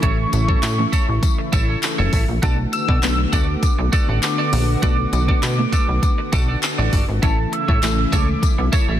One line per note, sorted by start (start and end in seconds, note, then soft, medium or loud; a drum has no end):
0.00 0.26 A1 loud
0.00 2.39 C#3 medium
0.00 2.39 E3 medium
0.00 0.33 E3 medium
0.00 7.19 A3 medium
0.00 0.33 A3 medium
0.00 0.33 C#4 medium
0.00 2.39 E4 medium
0.00 0.17 E4 medium
0.00 0.33 E4 medium
0.00 0.17 A4 medium
0.00 0.33 A4 medium
0.00 0.17 C#5 loud
0.00 2.09 C#6 loud
0.00 kick loud
0.00 closed hi-hat loud
0.18 muted clean electric guitar stroke medium
0.32 0.56 A1 loud
0.32 muted clean electric guitar stroke soft
0.32 closed hi-hat medium
0.32 tambourine soft
0.48 0.68 E3 medium
0.48 0.68 A3 medium
0.48 0.68 C#4 medium
0.48 0.68 E4 medium
0.48 0.59 E4 medium
0.48 0.69 F#4 medium
0.48 0.59 A4 medium
0.48 0.58 C#5 medium
0.48 kick loud
0.63 0.86 A2 loud
0.63 clap loud
0.63 closed hi-hat medium
0.63 tambourine medium
0.78 1.59 E3 medium
0.78 1.59 A3 medium
0.78 1.59 C#4 medium
0.78 1.59 E4 medium
0.78 1.59 A4 loud
0.78 muted clean electric guitar stroke medium
0.92 1.07 E4 medium
0.92 1.07 A4 loud
0.92 1.07 C#5 loud
0.92 kick medium
0.92 closed hi-hat medium
0.92 tambourine medium
1.08 1.20 A1 medium
1.08 muted clean electric guitar stroke soft
1.23 muted clean electric guitar stroke soft
1.23 kick loud
1.23 closed hi-hat loud
1.23 tambourine soft
1.38 muted clean electric guitar stroke soft
1.52 1.76 A1 medium
1.52 1.67 E4 medium
1.52 1.67 A4 loud
1.52 1.67 C#5 medium
1.52 kick loud
1.52 closed hi-hat medium
1.52 tambourine medium
1.68 1.79 E4 soft
1.68 1.79 A4 medium
1.68 1.78 C#5 medium
1.83 muted clean electric guitar stroke soft
1.83 clap loud
1.83 closed hi-hat medium
1.83 tambourine medium
1.98 2.10 F#1 loud
1.98 2.11 E4 medium
1.98 2.11 A4 medium
1.98 2.11 C#5 medium
2.12 2.25 A1 loud
2.12 2.24 E4 medium
2.12 2.24 A4 medium
2.12 2.24 C#5 medium
2.12 kick loud
2.12 open hi-hat medium
2.12 tambourine soft
2.29 2.40 A#1 medium
2.29 muted clean electric guitar stroke soft
2.42 2.66 B1 loud
2.42 7.19 D3 medium
2.42 2.84 A3 medium
2.42 7.19 B3 medium
2.42 2.84 B3 medium
2.42 2.84 D4 medium
2.42 2.56 F#4 medium
2.42 7.19 F#4 medium
2.42 2.84 F#4 medium
2.42 2.57 A4 medium
2.42 2.84 A4 medium
2.42 2.57 D5 loud
2.42 2.56 A5 loud
2.42 kick loud
2.42 closed hi-hat loud
2.42 tambourine soft
2.58 muted clean electric guitar stroke medium
2.72 3.35 E6 loud
2.72 muted clean electric guitar stroke soft
2.72 closed hi-hat medium
2.72 tambourine soft
2.88 3.00 B2 loud
2.88 2.99 F#4 medium
2.88 2.99 A4 medium
2.88 2.98 D5 medium
2.88 kick loud
3.02 3.26 B1 medium
3.02 3.23 A3 medium
3.02 3.24 B3 medium
3.02 3.24 D4 medium
3.02 3.24 F#4 medium
3.02 3.24 A4 medium
3.02 clap loud
3.02 closed hi-hat medium
3.02 tambourine medium
3.18 muted clean electric guitar stroke medium
3.32 3.56 D2 loud
3.32 4.14 A3 medium
3.32 4.14 B3 medium
3.32 4.14 D4 medium
3.32 3.47 F#4 medium
3.32 4.14 F#4 medium
3.32 4.14 A4 medium
3.32 3.47 A4 loud
3.32 3.47 D5 loud
3.32 3.93 D6 loud
3.32 kick medium
3.32 closed hi-hat medium
3.32 tambourine medium
3.48 muted clean electric guitar stroke medium
3.63 muted clean electric guitar stroke soft
3.63 kick loud
3.63 closed hi-hat loud
3.63 tambourine soft
3.79 3.90 B1 loud
3.79 muted clean electric guitar stroke medium
3.92 4.07 F#4 medium
3.92 4.07 A4 loud
3.92 4.07 D5 medium
3.92 kick loud
3.92 closed hi-hat medium
3.92 tambourine medium
4.08 4.20 A1 loud
4.08 4.19 F#4 medium
4.08 4.19 A4 medium
4.08 4.18 D5 medium
4.23 4.79 D6 loud
4.23 muted clean electric guitar stroke soft
4.23 clap loud
4.23 closed hi-hat loud
4.23 tambourine loud
4.38 4.51 F#4 medium
4.38 4.51 A4 medium
4.38 4.51 D5 loud
4.52 4.76 A#1 loud
4.52 4.64 F#4 medium
4.52 4.64 A4 medium
4.52 4.64 D5 medium
4.52 open hi-hat medium
4.52 tambourine soft
4.68 muted clean electric guitar stroke medium
4.82 5.06 B1 loud
4.82 5.13 A3 medium
4.82 5.13 B3 medium
4.82 5.13 D4 medium
4.82 4.97 F#4 loud
4.82 5.13 F#4 medium
4.82 4.97 A4 loud
4.82 5.13 A4 medium
4.82 4.97 D5 loud
4.82 6.89 D6 loud
4.82 kick loud
4.82 closed hi-hat loud
4.82 tambourine soft
4.98 muted clean electric guitar stroke soft
5.13 5.36 B1 loud
5.13 muted clean electric guitar stroke soft
5.13 closed hi-hat medium
5.13 tambourine soft
5.28 5.48 A3 medium
5.28 5.48 B3 medium
5.28 5.48 D4 medium
5.28 5.48 F#4 medium
5.28 5.39 F#4 medium
5.28 5.39 A4 medium
5.28 5.48 B4 medium
5.28 5.38 D5 medium
5.28 kick loud
5.43 5.66 B2 loud
5.43 clap loud
5.43 closed hi-hat medium
5.43 tambourine medium
5.58 6.39 A3 medium
5.58 6.39 B3 medium
5.58 6.39 D4 medium
5.58 6.39 F#4 medium
5.58 6.39 B4 loud
5.58 muted clean electric guitar stroke medium
5.72 5.87 F#4 medium
5.72 5.87 A4 loud
5.72 5.87 D5 medium
5.72 kick medium
5.72 closed hi-hat medium
5.72 tambourine medium
5.88 6.00 B1 loud
5.88 muted clean electric guitar stroke soft
6.02 muted clean electric guitar stroke soft
6.02 kick loud
6.02 closed hi-hat loud
6.02 tambourine soft
6.18 muted clean electric guitar stroke medium
6.32 6.56 B1 loud
6.32 6.47 F#4 medium
6.32 6.47 A4 loud
6.32 6.47 D5 loud
6.32 kick loud
6.32 closed hi-hat medium
6.32 tambourine medium
6.48 6.59 F#4 medium
6.48 6.59 A4 medium
6.48 6.58 D5 medium
6.63 muted clean electric guitar stroke soft
6.63 clap loud
6.63 closed hi-hat loud
6.63 tambourine loud
6.78 6.90 A1 loud
6.78 6.91 F#4 medium
6.78 6.91 A4 medium
6.78 6.91 D5 medium
6.92 7.05 G1 loud
6.92 7.04 F#4 medium
6.92 7.04 A4 medium
6.92 7.04 D5 medium
6.92 kick medium
6.92 open hi-hat medium
6.92 tambourine soft
7.08 7.20 G#1 loud
7.08 muted clean electric guitar stroke medium
7.22 7.46 A1 loud
7.22 9.00 C#3 medium
7.22 7.64 E3 medium
7.22 9.00 E3 medium
7.22 7.64 A3 medium
7.22 9.00 A3 medium
7.22 7.64 C#4 medium
7.22 7.37 E4 medium
7.22 9.00 E4 loud
7.22 7.64 E4 medium
7.22 7.64 A4 medium
7.22 7.37 A4 medium
7.22 7.37 C#5 loud
7.22 7.54 A5 loud
7.22 kick loud
7.22 closed hi-hat loud
7.22 tambourine soft
7.38 muted clean electric guitar stroke soft
7.52 8.14 E6 loud
7.52 muted clean electric guitar stroke soft
7.52 closed hi-hat medium
7.68 7.80 A2 loud
7.68 7.79 E4 medium
7.68 7.79 A4 medium
7.68 7.78 C#5 medium
7.68 kick loud
7.83 8.06 A1 medium
7.83 8.04 E3 medium
7.83 8.04 A3 medium
7.83 8.04 C#4 medium
7.83 8.04 E4 medium
7.83 8.04 A4 medium
7.83 clap loud
7.83 closed hi-hat medium
7.83 tambourine medium
7.98 muted clean electric guitar stroke soft
8.12 8.36 C#2 medium
8.12 8.94 E3 medium
8.12 8.94 A3 medium
8.12 8.94 C#4 medium
8.12 8.27 E4 medium
8.12 8.94 E4 medium
8.12 8.27 A4 medium
8.12 8.94 A4 medium
8.12 8.27 C#5 medium
8.12 8.73 D6 loud
8.12 kick medium
8.12 closed hi-hat medium
8.12 tambourine medium
8.28 muted clean electric guitar stroke medium
8.42 muted clean electric guitar stroke soft
8.42 kick loud
8.42 closed hi-hat loud
8.42 tambourine soft
8.58 8.70 B1 loud
8.58 muted clean electric guitar stroke medium
8.72 8.87 E4 medium
8.72 8.87 A4 medium
8.72 8.87 C#5 loud
8.72 kick loud
8.72 closed hi-hat medium
8.72 tambourine medium
8.88 9.00 A1 medium
8.88 8.99 E4 medium
8.88 8.98 A4 medium
8.88 8.98 C#5 medium